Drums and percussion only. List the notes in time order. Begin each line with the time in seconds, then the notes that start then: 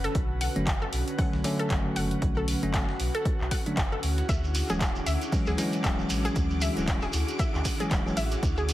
0.04 snare, closed hi-hat
0.15 kick, closed hi-hat
0.41 closed hi-hat, open hi-hat
0.56 closed hi-hat
0.67 kick, snare, clap, closed hi-hat
0.93 closed hi-hat, open hi-hat
1.08 closed hi-hat
1.18 kick, closed hi-hat, open hi-hat
1.33 snare
1.44 closed hi-hat, open hi-hat
1.59 closed hi-hat
1.70 kick, snare, clap, closed hi-hat
1.96 closed hi-hat, open hi-hat
2.11 closed hi-hat
2.22 kick, closed hi-hat
2.48 closed hi-hat, open hi-hat
2.63 closed hi-hat
2.74 kick, snare, clap, closed hi-hat
2.89 snare
3.00 closed hi-hat, open hi-hat
3.15 closed hi-hat
3.25 kick, closed hi-hat
3.41 clap
3.51 kick, closed hi-hat, open hi-hat
3.66 closed hi-hat
3.77 kick, snare, clap, closed hi-hat
4.03 closed hi-hat, open hi-hat
4.18 snare, closed hi-hat
4.29 kick, closed hi-hat, shekere
4.44 shekere
4.55 closed hi-hat, open hi-hat, shekere
4.70 closed hi-hat, shekere
4.81 kick, snare, clap, closed hi-hat, shekere
4.95 shekere
5.07 closed hi-hat, open hi-hat, shekere
5.22 closed hi-hat, shekere
5.32 kick, closed hi-hat, open hi-hat, shekere
5.47 snare, shekere
5.58 closed hi-hat, open hi-hat, shekere
5.73 closed hi-hat, shekere
5.84 kick, snare, clap, closed hi-hat, shekere
5.99 shekere
6.10 closed hi-hat, open hi-hat, shekere
6.25 closed hi-hat, shekere
6.36 kick, closed hi-hat, shekere
6.50 shekere
6.61 closed hi-hat, open hi-hat, shekere
6.77 closed hi-hat, shekere
6.88 kick, snare, clap, closed hi-hat, shekere
7.02 snare, shekere
7.13 closed hi-hat, open hi-hat, shekere
7.28 closed hi-hat, shekere
7.39 kick, closed hi-hat, shekere
7.54 clap, shekere
7.65 kick, closed hi-hat, open hi-hat, shekere
7.80 closed hi-hat, shekere
7.91 kick, snare, clap, closed hi-hat, shekere
8.07 shekere
8.17 closed hi-hat, open hi-hat, shekere
8.31 snare, closed hi-hat, shekere
8.43 kick, closed hi-hat, shekere
8.57 shekere
8.69 closed hi-hat, open hi-hat, shekere